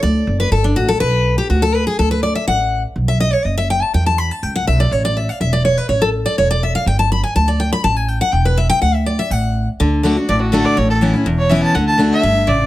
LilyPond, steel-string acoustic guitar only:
\new Staff \with { instrumentName = "Steel-string acoustic guitar" } { \time 4/4 \key d \major \tempo 4 = 246 << { d''4. b'8 a'8 d'8 fis'8 a'8 | b'4. g'8 fis'8 a'8 b'8 gis'8 | a'8 b'8 d''8 e''8 fis''4. r8 | r8 e''8 ees''8 cis''8 ees''8 e''8 g''8 a''8 |
g''8 a''8 b''8 a''8 g''8 fis''8 e''8 d''8 | cis''8 d''8 e''8 f''8 e''8 d''8 cis''8 b'8 | cis''8 a'8 r8 d''8 cis''8 d''8 e''8 f''8 | g''8 a''8 b''8 gis''8 a''8 d''8 g''8 b''8 |
a''8 gis''8 g''8 fis''8 g''8 b'8 e''8 g''8 | fis''8 e''8 d''8 e''8 fis''4. r8 | r4 <d a d' fis'>8 <d' fis'>8 r4 <d a d' fis'>4 | r4 <e b cis' e'>8 <cis' e'>8 r4 <e b cis' e'>4 |
r4 <d a d' fis'>4 r2 | } \\ { r1 | r1 | r1 | r1 |
r1 | r1 | r1 | r1 |
r1 | r1 | d2 a,2 | a,2 e,2 |
d2 g,4 cis4 | } >> }